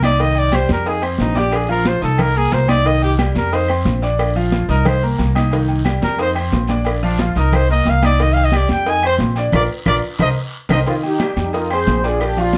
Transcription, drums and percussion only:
0.03 cowbell, low bongo, high conga, low agogo, short guiro, claves
0.19 cowbell, high conga, low agogo, long guiro, maracas
0.35 high conga, low agogo, maracas
0.52 cowbell, high conga, low agogo, short guiro, claves, maracas
0.69 high conga, short guiro, maracas
0.86 cowbell, high conga, low agogo, long guiro, maracas
1.02 high conga, low agogo, claves, maracas
1.18 cowbell, high conga, low timbale, short guiro, maracas
1.35 cowbell, high conga, low agogo, short guiro, maracas
1.52 cowbell, low agogo, long guiro, claves, maracas
1.69 high conga, maracas
1.85 cowbell, high conga, low agogo, short guiro, maracas
2.02 cowbell, high conga, short guiro, maracas
2.18 cowbell, high conga, low conga, low agogo, long guiro, claves, maracas
2.35 high conga, maracas
2.52 cowbell, high conga, low timbale, low agogo, short guiro, maracas
2.68 cowbell, high conga, low agogo, short guiro, claves, maracas
2.85 cowbell, low agogo, long guiro, maracas
3.02 high conga, low agogo, maracas
3.19 cowbell, high conga, low agogo, short guiro, claves, maracas
3.35 high conga, short guiro, maracas
3.52 cowbell, high conga, low agogo, long guiro, maracas
3.68 high conga, low agogo, claves, maracas
3.85 cowbell, high conga, short guiro, maracas
4.02 cowbell, low agogo, short guiro, maracas
4.19 cowbell, high conga, low agogo, long guiro, claves, maracas
4.36 high conga, maracas
4.52 cowbell, high conga, low agogo, short guiro, maracas
4.69 cowbell, high conga, short guiro, maracas
4.85 cowbell, high conga, low conga, low agogo, long guiro, claves, maracas
5.03 high conga, maracas
5.19 cowbell, high conga, low agogo, short guiro, maracas
5.35 cowbell, high conga, low agogo, short guiro, claves, maracas
5.51 cowbell, low agogo, long guiro, maracas
5.69 high conga, low agogo, maracas
5.85 cowbell, high conga, low agogo, short guiro, claves, maracas
6.02 high conga, short guiro, maracas
6.18 cowbell, high conga, low agogo, long guiro, maracas
6.35 high conga, low agogo, claves, maracas
6.52 cowbell, high conga, low timbale, short guiro, maracas
6.67 cowbell, high conga, low agogo, short guiro, maracas
6.84 cowbell, high conga, low agogo, long guiro, claves, maracas
7.02 high conga, maracas
7.19 cowbell, high conga, low agogo, short guiro, maracas
7.35 cowbell, high conga, short guiro, maracas
7.52 cowbell, high conga, low conga, low agogo, long guiro, claves, maracas
7.69 high conga, maracas
7.85 cowbell, high conga, low agogo, short guiro, maracas
8.03 cowbell, high conga, low agogo, short guiro, claves, maracas
8.19 cowbell, low agogo, long guiro, maracas
8.36 high conga, low agogo, maracas
8.52 cowbell, high conga, low agogo, short guiro, claves, maracas
8.69 high conga, short guiro, maracas
8.86 cowbell, high conga, low agogo, long guiro, maracas
9.03 high conga, low agogo, claves, maracas
9.19 cowbell, high conga, low timbale, short guiro, maracas
9.36 cowbell, low agogo, short guiro, maracas
9.52 cowbell, low conga, high timbale, long guiro, claves, maracas
9.85 cowbell, low conga, high timbale, long guiro, claves, maracas
10.19 cowbell, low conga, high timbale, long guiro, claves, maracas
10.69 cowbell, low conga, high timbale, long guiro, claves, maracas
10.86 cowbell, high conga, low agogo, long guiro, maracas
11.03 high conga, low agogo, maracas
11.19 cowbell, high conga, low agogo, short guiro, claves, maracas
11.37 high conga, short guiro, maracas
11.53 cowbell, high conga, low agogo, long guiro, maracas
11.70 high conga, low agogo, claves, maracas
11.87 cowbell, high conga, low timbale, short guiro, maracas
12.04 cowbell, low agogo, short guiro, maracas
12.20 cowbell, high conga, low agogo, long guiro, claves, maracas
12.37 high conga, maracas
12.53 cowbell, high conga, low agogo, maracas

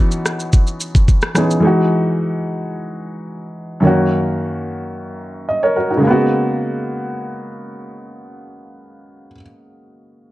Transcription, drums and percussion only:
0.11 shaker
0.26 cross-stick, shaker
0.40 shaker
0.53 kick, shaker
0.67 shaker
0.81 shaker
0.95 kick, shaker
1.08 kick, shaker
1.22 cross-stick, shaker
1.35 cross-stick, shaker
1.51 shaker

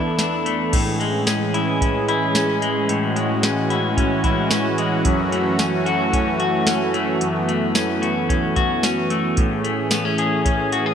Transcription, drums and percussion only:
0.19 snare, closed hi-hat, tambourine
0.46 closed hi-hat
0.73 kick, closed hi-hat, crash
1.01 closed hi-hat
1.27 snare, closed hi-hat, tambourine
1.54 closed hi-hat
1.81 kick, closed hi-hat
2.08 closed hi-hat
2.35 snare, closed hi-hat, tambourine
2.62 closed hi-hat
2.89 closed hi-hat
3.16 closed hi-hat
3.43 snare, closed hi-hat, tambourine
3.70 closed hi-hat
3.97 kick, closed hi-hat
4.24 kick, closed hi-hat
4.51 snare, closed hi-hat, tambourine
4.78 closed hi-hat
5.05 kick, closed hi-hat
5.32 closed hi-hat
5.59 snare, closed hi-hat, tambourine
5.86 closed hi-hat
6.13 kick, closed hi-hat
6.40 closed hi-hat
6.67 snare, closed hi-hat, tambourine
6.94 closed hi-hat
7.21 closed hi-hat
7.49 closed hi-hat
7.75 snare, closed hi-hat, tambourine
8.03 closed hi-hat
8.30 kick, closed hi-hat
8.56 kick, closed hi-hat
8.83 snare, closed hi-hat, tambourine
9.10 closed hi-hat
9.37 kick, closed hi-hat
9.65 closed hi-hat
9.91 snare, closed hi-hat, tambourine
10.18 closed hi-hat
10.45 kick, closed hi-hat
10.72 closed hi-hat

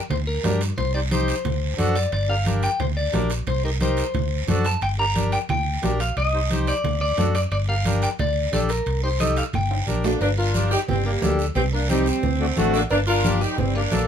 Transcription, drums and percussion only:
0.11 high conga, low conga, high timbale, long guiro
0.44 high conga, high timbale, low timbale, short guiro
0.61 high timbale, short guiro
0.78 high conga, low conga, high timbale, long guiro
1.11 high conga, high timbale, short guiro
1.28 high timbale, short guiro
1.45 high conga, low conga, high timbale, long guiro
1.78 high conga, high timbale, short guiro
1.95 high timbale, short guiro
2.12 high conga, high timbale, long guiro
2.46 high conga, high timbale, short guiro
2.63 high timbale, short guiro
2.80 high conga, low conga, high timbale, long guiro
3.13 high conga, high timbale, low timbale, short guiro
3.30 high timbale, short guiro
3.47 high conga, low conga, high timbale, long guiro
3.80 high conga, high timbale, short guiro
3.97 high timbale, short guiro
4.14 high conga, low conga, high timbale, long guiro
4.48 high conga, low conga, high timbale, short guiro
4.65 high timbale, short guiro
4.81 high conga, high timbale, long guiro
5.16 high conga, high timbale, short guiro
5.32 high timbale, short guiro
5.49 high conga, low conga, high timbale, long guiro
5.83 high conga, high timbale, low timbale, short guiro
6.00 high timbale, short guiro
6.17 high conga, high timbale, long guiro
6.50 high conga, high timbale, short guiro
6.67 high timbale, short guiro
6.84 high conga, low conga, high timbale, long guiro
7.18 high conga, high timbale, low timbale, short guiro
7.35 high timbale, short guiro
7.52 high conga, high timbale, long guiro
7.85 high conga, high timbale, short guiro
8.02 high timbale, short guiro
8.19 high conga, low conga, high timbale, long guiro
8.53 high conga, high timbale, short guiro
8.69 high timbale, short guiro
8.86 high conga, high timbale, long guiro
9.20 high conga, high timbale, short guiro
9.36 high timbale, short guiro
9.53 high conga, low conga, high timbale, long guiro
9.71 high timbale
9.87 high conga, short guiro
10.04 low timbale, short guiro
10.21 cowbell, high conga, long guiro
10.54 cowbell, high conga, short guiro
10.71 short guiro
10.88 cowbell, high conga, low conga, long guiro
11.22 cowbell, high conga, low timbale, short guiro
11.39 short guiro
11.55 cowbell, high conga, low conga, long guiro
11.89 cowbell, high conga, short guiro
12.06 short guiro
12.23 cowbell, high conga, low conga, long guiro
12.57 cowbell, high conga, short guiro
12.74 short guiro
12.90 cowbell, high conga, long guiro
13.24 cowbell, high conga, short guiro
13.41 short guiro
13.58 cowbell, high conga, low conga, long guiro
13.91 cowbell, high conga, low timbale, short guiro

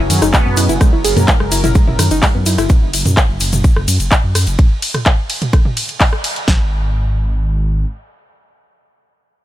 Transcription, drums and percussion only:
0.10 open hi-hat, ride, shaker
0.22 cross-stick, closed hi-hat, shaker
0.34 kick, clap, closed hi-hat, shaker
0.57 open hi-hat, ride, shaker
0.69 closed hi-hat, shaker
0.81 kick, cross-stick, closed hi-hat, shaker
1.04 open hi-hat, ride, shaker
1.17 closed hi-hat, mid tom, shaker
1.28 kick, clap, closed hi-hat, shaker
1.40 cross-stick
1.52 open hi-hat, ride, shaker
1.64 closed hi-hat, mid tom, shaker
1.75 kick, closed hi-hat, shaker
1.87 mid tom
1.99 cross-stick, open hi-hat, ride, shaker
2.11 closed hi-hat, shaker
2.23 kick, clap, open hi-hat, shaker
2.46 open hi-hat, ride, shaker
2.58 cross-stick, closed hi-hat, shaker
2.69 kick, closed hi-hat, shaker
2.93 open hi-hat, ride, shaker
3.06 closed hi-hat, mid tom, shaker
3.17 kick, cross-stick, clap, closed hi-hat, shaker
3.40 open hi-hat, ride, shaker
3.53 closed hi-hat, mid tom, shaker
3.64 kick, closed hi-hat, shaker
3.76 cross-stick
3.88 open hi-hat, ride, shaker
4.00 closed hi-hat, shaker
4.12 kick, clap, closed hi-hat, shaker
4.35 cross-stick, open hi-hat, ride, shaker
4.46 closed hi-hat, shaker
4.59 kick, closed hi-hat
4.82 open hi-hat, ride
4.94 cross-stick, closed hi-hat, mid tom
5.06 kick, clap, closed hi-hat
5.30 open hi-hat, ride
5.42 closed hi-hat, mid tom
5.53 kick, cross-stick, closed hi-hat
5.65 mid tom
5.77 open hi-hat, ride
5.89 closed hi-hat
6.01 kick, clap, open hi-hat
6.13 cross-stick
6.24 open hi-hat, ride
6.36 closed hi-hat
6.48 kick, snare

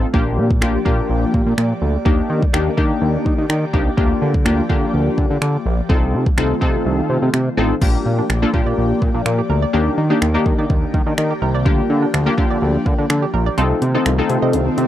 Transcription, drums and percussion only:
0.14 kick
0.50 kick
0.62 finger snap
0.86 kick
1.34 kick
1.58 finger snap
2.06 kick
2.42 kick
2.54 finger snap
2.78 kick
3.26 kick
3.50 finger snap
3.74 kick
3.98 kick
4.34 kick
4.46 finger snap
4.70 kick
5.18 kick
5.42 finger snap
5.90 kick
6.26 kick
6.38 finger snap
6.62 kick
7.34 finger snap
7.82 kick, crash
8.30 finger snap
8.54 kick
9.02 kick
9.26 finger snap
10.22 finger snap
10.46 kick
10.70 kick
10.94 kick
11.18 finger snap
11.66 kick
12.14 finger snap
12.38 kick
12.86 kick
13.10 finger snap
13.58 closed hi-hat
13.82 closed hi-hat
14.06 finger snap, closed hi-hat
14.30 closed hi-hat
14.53 closed hi-hat
14.78 closed hi-hat

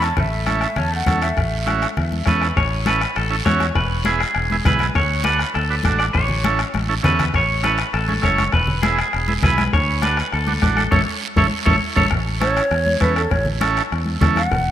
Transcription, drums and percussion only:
0.02 bombo rim, short guiro
0.17 bombo low, bombo rim, low conga, long guiro
0.46 bombo rim, high conga, short guiro
0.61 bombo rim, short guiro
0.76 bombo rim, low conga, long guiro
1.06 bombo low, bombo rim, high conga, low conga, short guiro
1.22 bombo rim, short guiro
1.37 bombo low, bombo rim, long guiro
1.67 bombo rim, high conga, short guiro
1.82 bombo rim, short guiro
1.97 bombo rim, low conga, long guiro
2.12 high conga
2.26 bombo low, bombo rim, high conga, short guiro
2.42 bombo rim, short guiro
2.57 bombo low, bombo rim, high conga, long guiro
2.86 bombo rim, high conga, short guiro
3.01 bombo rim, short guiro
3.15 bombo rim, high conga, long guiro
3.45 bombo low, bombo rim, high conga, short guiro
3.60 bombo rim, high conga, short guiro
3.75 bombo low, bombo rim, high conga, long guiro
4.05 bombo rim, high conga, short guiro
4.20 bombo rim, short guiro
4.35 bombo rim, high conga, long guiro
4.50 high conga
4.65 bombo low, bombo rim, high conga, low conga, short guiro
4.79 bombo rim, high conga, short guiro
4.94 bombo low, bombo rim, high conga, long guiro
5.24 bombo rim, high conga, short guiro
5.39 bombo rim, short guiro
5.54 bombo rim, high conga, long guiro
5.83 bombo low, bombo rim, high conga, short guiro
6.00 bombo rim, short guiro
6.14 bombo low, bombo rim, high conga, long guiro
6.29 low conga
6.44 bombo rim, high conga, short guiro
6.59 bombo rim, short guiro
6.74 bombo rim, high conga, long guiro
7.04 bombo low, bombo rim, low conga, short guiro
7.19 bombo rim, low conga, short guiro
7.34 bombo low, bombo rim, high conga, long guiro
7.64 bombo rim, high conga, short guiro
7.78 bombo rim, short guiro
7.94 bombo rim, high conga, long guiro
8.09 high conga
8.23 bombo low, bombo rim, high conga, short guiro
8.38 bombo rim, high conga, short guiro
8.52 bombo low, bombo rim, high conga, long guiro
8.67 low conga
8.83 bombo rim, high conga, short guiro
8.98 bombo rim, short guiro
9.13 bombo rim, high conga, long guiro
9.28 high conga
9.43 bombo low, bombo rim, high conga, low conga, short guiro
9.58 bombo rim, high conga, short guiro
9.73 bombo low, bombo rim, high conga, long guiro
10.02 bombo rim, high conga, short guiro
10.17 bombo rim, short guiro
10.32 bombo rim, high conga, long guiro
10.47 high conga
10.62 bombo low, bombo rim, high conga, short guiro
10.77 bombo rim, high conga, short guiro
10.92 bombo low, high conga, long guiro
11.36 bombo low, high conga, long guiro
11.66 bombo low, high conga
11.96 bombo low, high conga, long guiro
12.11 bombo low, bombo rim, high conga, long guiro
12.41 bombo rim, high conga, short guiro
12.57 bombo rim, short guiro
12.71 bombo rim, high conga, long guiro
12.86 high conga
13.00 bombo low, bombo rim, high conga, short guiro
13.16 bombo rim, short guiro
13.31 bombo low, bombo rim, high conga, long guiro
13.45 low conga
13.61 bombo rim, high conga, short guiro
13.77 bombo rim, short guiro
13.92 bombo rim, high conga, long guiro
14.06 high conga
14.21 bombo low, bombo rim, high conga, low conga, short guiro
14.36 bombo rim, high conga, short guiro
14.51 bombo low, bombo rim, high conga, long guiro

